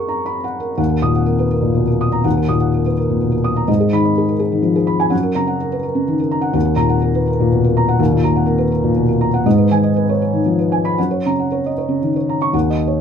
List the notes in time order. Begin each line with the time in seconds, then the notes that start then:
Already playing: F#2 G#4 A#4 F#5 C#6
0.08 A#5
0.26 B5
0.44 F#5
0.60 A#4
0.77 D#2 F#5
0.89 A#4
1.02 A#2 D#6
1.15 F#5
1.26 A#4
1.39 B4
1.51 A#4
1.62 A#2
1.74 B2
1.87 A#4
2.01 D#6
2.12 A#5
2.24 D#2 F#5
2.37 A#4
2.49 A#2 D#6
2.60 F#5
2.74 A#4
2.86 B4
2.97 A#4
3.10 A#2
3.21 B2
3.32 A#4
3.44 D#6
3.56 A#5
3.68 G#2 D#5
3.80 G#4
3.93 D#3 B5
4.05 D#5
4.18 G#4
4.28 A#4
4.39 G#4
4.52 D#3
4.62 F3
4.76 G#4
4.87 B5
5.00 G#5
5.10 F#2 F#5
5.23 A#4
5.35 C#3 A#5
5.47 F#5
5.61 A#4
5.72 B4
5.83 A#4
5.95 C#3
6.08 D#3
6.20 A#4
6.31 A#5
6.41 F#5
6.53 D#2 F#5
6.65 A#4
6.76 A#2 A#5
6.89 F#5
7.02 A#4
7.15 B4
7.28 A#4
7.40 A#2
7.52 B2
7.64 A#4
7.77 A#5
7.89 F#5
7.99 D#2 A#4
8.12 A#2
8.24 A#2 A#5
8.36 F#5
8.46 A#4
8.58 B4
8.72 A#4
8.84 A#2
8.96 B2
9.09 A#4
9.21 A#5
9.34 F#5
9.46 G#2 D#5
9.58 B4
9.71 D#3 G#5
9.84 D#5
9.96 B4
10.09 C#5
10.22 B4
10.33 D#3
10.46 F3
10.59 B4
10.72 G#5
10.85 B5
10.98 F#2 F#5
11.11 C#5
11.26 C#3 A#5
11.39 F#5
11.52 C#5
11.66 D#5
11.78 C#5
11.88 C#3
12.02 D#3
12.16 C#5
12.29 A#5
12.42 C#6
12.53 D#2 F#5
12.70 D#5
12.87 C#5